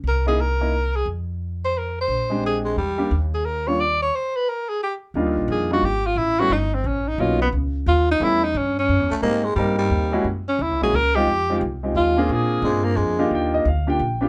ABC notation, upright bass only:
X:1
M:3/4
L:1/8
Q:"Swing" 1/4=176
K:Eb
V:1 name="Upright bass" clef=bass
C,,6 | F,,6 | B,,,4 _F,,2 | E,,6 |
z6 | (3E,, D,, B,,, F,,2 A,,,2 | =A,,,2 G,,,2 A,,,2 | =B,,,2 ^C,,2 ^D,,2 |
=E,,2 G,,2 (3_G,, E,, ^C,, | A,,2 G,,2 E,,2 | _G,,2 (3E,, _D,, B,,, D,,2 | F,,2 C,,2 E,,2 |
B,,2 G,,2 F,,2 | E,,2 D,,2 B,,,2 |]